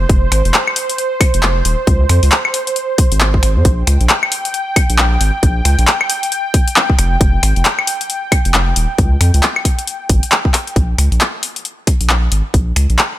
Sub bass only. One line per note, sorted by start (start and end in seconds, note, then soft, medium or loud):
0.09 0.28 F1 medium
0.31 0.42 G#1 medium
0.45 0.52 F1 loud
1.34 1.62 F1 medium
1.65 1.75 D#1 medium
1.87 2.06 C#2 loud
2.09 2.20 F2 loud
2.23 2.30 C#2 loud
3.12 3.40 G#1 loud
3.43 3.58 G#1 medium
3.56 3.63 F2 medium
3.65 3.84 A#1 loud
3.87 3.98 C#2 medium
4.00 4.08 A#1 loud
4.89 5.18 A#1 medium
5.20 5.31 G#1 medium
5.43 5.61 A#1 loud
5.65 5.76 C#2 medium
5.78 5.85 A#1 loud
6.98 7.17 F1 loud
7.21 7.39 F1 medium
7.43 7.53 G#1 loud
7.56 7.63 F1 loud
8.45 8.73 F1 medium
8.76 8.87 D#1 medium
8.98 9.17 C#2 loud
9.21 9.31 F2 medium
9.34 9.41 C#2 loud
10.10 10.20 G#1 medium
10.76 10.95 A#1 medium
10.98 11.09 C#2 medium
11.11 11.19 A#1 loud
12.00 12.29 A#1 medium
12.31 12.42 G#1 medium
12.54 12.72 A#1 medium
12.76 12.87 C#2 medium
12.90 12.97 A#1 loud